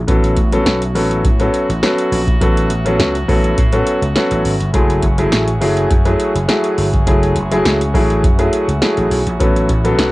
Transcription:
0.08 slap bass A1, french horn section E3 A3 B3 C#4 F#4, grand piano F#3 B3 C#4 A4, kick, closed hi-hat
0.24 closed hi-hat
0.37 slap bass A1, kick, closed hi-hat
0.52 grand piano F#3 B3 C#4 A4, closed hi-hat
0.66 slap bass B1, snare, closed hi-hat
0.82 closed hi-hat
0.95 slap bass A1, grand piano F#3 B3 C#4 A4, open hi-hat
1.11 closed hi-hat
1.25 slap bass A2, kick, closed hi-hat
1.40 grand piano F#3 B3 C#4 A4, closed hi-hat
1.54 closed hi-hat
1.69 slap bass A1, closed hi-hat
1.83 grand piano F#3 B3 C#4 A4, snare, closed hi-hat
1.98 closed hi-hat
2.12 slap bass A#1, open hi-hat
2.27 kick, closed hi-hat
2.41 slap bass A1, grand piano F#3 B3 C#4 A4, kick, closed hi-hat
2.57 closed hi-hat
2.70 slap bass A1, closed hi-hat
2.85 grand piano F#3 B3 C#4 A4, closed hi-hat
2.99 slap bass C#2, snare, closed hi-hat
3.15 closed hi-hat
3.28 slap bass A1, grand piano F#3 B3 C#4 A4, kick, open hi-hat
3.44 closed hi-hat
3.58 slap bass A2, kick, closed hi-hat
3.73 grand piano F#3 B3 C#4 A4, closed hi-hat
3.87 closed hi-hat
4.02 slap bass C#2, closed hi-hat
4.16 grand piano F#3 B3 C#4 A4, snare, closed hi-hat
4.31 slap bass A1, closed hi-hat
4.45 slap bass G#1, open hi-hat
4.60 slap bass G1, closed hi-hat
4.74 slap bass F#1, grand piano F#3 A3 E4 G#4, french horn section F#4 G#4, kick, closed hi-hat
4.90 closed hi-hat
5.03 slap bass F#1, kick, closed hi-hat
5.18 grand piano F#3 A3 E4 G#4, closed hi-hat
5.32 slap bass A1, snare, closed hi-hat
5.48 closed hi-hat
5.61 slap bass F#1, grand piano F#3 A3 E4 G#4, open hi-hat
5.77 closed hi-hat
5.91 slap bass F#2, kick, closed hi-hat
6.05 grand piano F#3 A3 E4 G#4, closed hi-hat
6.20 closed hi-hat
6.35 slap bass F#1, closed hi-hat
6.48 grand piano F#3 A3 E4 G#4, snare, closed hi-hat
6.64 closed hi-hat
6.78 slap bass G1, open hi-hat
6.93 kick, closed hi-hat
7.07 slap bass F#1, grand piano F#3 A3 E4 G#4, kick, closed hi-hat
7.23 closed hi-hat
7.36 slap bass F#1, closed hi-hat
7.51 grand piano F#3 A3 E4 G#4, closed hi-hat
7.65 slap bass C#2, snare, closed hi-hat
7.81 closed hi-hat
7.94 slap bass A1, grand piano F#3 A3 E4 G#4, kick, open hi-hat
8.10 closed hi-hat
8.24 slap bass F#2, kick, closed hi-hat
8.39 grand piano F#3 A3 E4 G#4, closed hi-hat
8.53 closed hi-hat
8.68 slap bass C#2, closed hi-hat
8.82 grand piano F#3 A3 E4 G#4, snare, closed hi-hat
8.97 slap bass A1, closed hi-hat
9.11 slap bass B1, open hi-hat
9.27 slap bass A#1, closed hi-hat
9.39 slap bass A1, grand piano F#3 B3 C#4 A4, french horn section B3, kick, closed hi-hat
9.56 closed hi-hat
9.69 slap bass A1, kick, closed hi-hat
9.84 grand piano F#3 B3 C#4 A4, closed hi-hat
9.98 slap bass B1, snare, closed hi-hat

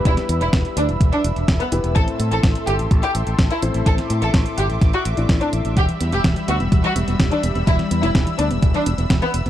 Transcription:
Already playing: analog synth pad G3 E5 B5 E6
0.05 fingered electric bass E1, grand piano E3 B3 E4 G4 B4, violin section E4, kick, closed hi-hat
0.17 snare, closed hi-hat
0.29 fingered electric bass E2, closed hi-hat
0.41 fingered electric bass E1, violin section E4, closed hi-hat
0.53 fingered electric bass E1, kick, snare, closed hi-hat
0.65 closed hi-hat
0.77 fingered electric bass D2, violin section D4, closed hi-hat
0.89 fingered electric bass E1, closed hi-hat
1.01 fingered electric bass E1, kick, closed hi-hat
1.13 violin section D4, closed hi-hat
1.24 fingered electric bass E1, closed hi-hat
1.36 fingered electric bass E1, closed hi-hat
1.48 fingered electric bass E1, kick, snare, closed hi-hat
1.60 violin section B3, closed hi-hat
1.72 fingered electric bass E1, grand piano B3 E4 G4 B4, closed hi-hat
1.84 fingered electric bass E1, closed hi-hat
1.96 fingered electric bass A1, grand piano A2 C4 E4 C5, analog synth pad A4 C6, violin section A4, kick, closed hi-hat
2.08 closed hi-hat
2.20 fingered electric bass A2, closed hi-hat
2.32 fingered electric bass A1, violin section A4, closed hi-hat
2.43 fingered electric bass A1, kick, snare, closed hi-hat
2.55 closed hi-hat
2.67 fingered electric bass G1, violin section G4, closed hi-hat
2.79 fingered electric bass A1, closed hi-hat
2.91 fingered electric bass A1, kick, closed hi-hat
3.03 violin section G4, closed hi-hat
3.15 fingered electric bass A1, closed hi-hat
3.27 fingered electric bass A1, closed hi-hat
3.39 fingered electric bass A1, kick, snare, closed hi-hat
3.51 violin section E4, closed hi-hat
3.62 fingered electric bass A1, grand piano A2 C4 E4 A4 C5, closed hi-hat
3.74 fingered electric bass A1, closed hi-hat
3.86 fingered electric bass A1, grand piano A2 C4 E4 A4 C5, violin section A4, analog synth pad D6, kick, closed hi-hat
3.98 snare, closed hi-hat
4.10 fingered electric bass A2, closed hi-hat
4.22 fingered electric bass A1, violin section A4, closed hi-hat
4.34 fingered electric bass A1, kick, snare, closed hi-hat
4.46 closed hi-hat
4.58 fingered electric bass G1, violin section G4, closed hi-hat
4.70 fingered electric bass A1, closed hi-hat
4.81 fingered electric bass A1, kick, snare, closed hi-hat
4.93 violin section F#4, closed hi-hat
5.05 fingered electric bass A1, closed hi-hat
5.17 fingered electric bass A1, grand piano A2 C4 E4 A4 D5, closed hi-hat
5.29 fingered electric bass A1, kick, snare, closed hi-hat
5.41 violin section D4, closed hi-hat
5.53 fingered electric bass A1, closed hi-hat
5.65 fingered electric bass A1, closed hi-hat
5.76 fingered electric bass E1, synth arpeggio sound E3, analog synth pad G3 B5 E6, violin section G4, kick, closed hi-hat
5.89 synth arpeggio sound E3, closed hi-hat
6.01 fingered electric bass E2, synth arpeggio sound B3, closed hi-hat
6.12 fingered electric bass E1, synth arpeggio sound B3, violin section G4, closed hi-hat
6.24 fingered electric bass E1, synth arpeggio sound E3, kick, snare, closed hi-hat
6.36 synth arpeggio sound E3, closed hi-hat
6.48 fingered electric bass D2, synth arpeggio sound B3, violin section F#4, closed hi-hat
6.60 fingered electric bass E1, synth arpeggio sound B3, closed hi-hat
6.72 fingered electric bass E1, synth arpeggio sound E3, kick, closed hi-hat
6.84 synth arpeggio sound E3, violin section F#4, closed hi-hat
6.96 fingered electric bass E1, synth arpeggio sound B3, closed hi-hat
7.08 fingered electric bass E1, synth arpeggio sound B3, closed hi-hat
7.20 fingered electric bass E1, synth arpeggio sound E3, kick, snare, closed hi-hat
7.31 synth arpeggio sound E3, violin section D4, closed hi-hat
7.43 fingered electric bass E1, synth arpeggio sound B3, closed hi-hat
7.55 fingered electric bass E1, synth arpeggio sound B3, closed hi-hat
7.67 fingered electric bass E1, synth arpeggio sound E3, violin section E4, kick, closed hi-hat
7.79 synth arpeggio sound E3, snare, closed hi-hat
7.91 fingered electric bass E2, synth arpeggio sound B3, closed hi-hat
8.03 fingered electric bass E1, synth arpeggio sound B3, violin section E4, closed hi-hat
8.15 fingered electric bass E1, synth arpeggio sound E3, kick, snare, closed hi-hat
8.27 synth arpeggio sound E3, closed hi-hat
8.39 fingered electric bass D2, synth arpeggio sound B3, violin section D4, closed hi-hat
8.51 fingered electric bass E1, synth arpeggio sound B3, closed hi-hat
8.62 fingered electric bass E1, synth arpeggio sound E3, kick, closed hi-hat
8.74 synth arpeggio sound E3, violin section D4, closed hi-hat
8.86 fingered electric bass E1, synth arpeggio sound B3, closed hi-hat
8.98 fingered electric bass E1, synth arpeggio sound B3, closed hi-hat
9.10 fingered electric bass E1, synth arpeggio sound E3, kick, snare, closed hi-hat
9.22 synth arpeggio sound E3, violin section B3, closed hi-hat
9.34 fingered electric bass E1, synth arpeggio sound B3, closed hi-hat
9.46 fingered electric bass E1, synth arpeggio sound B3, closed hi-hat

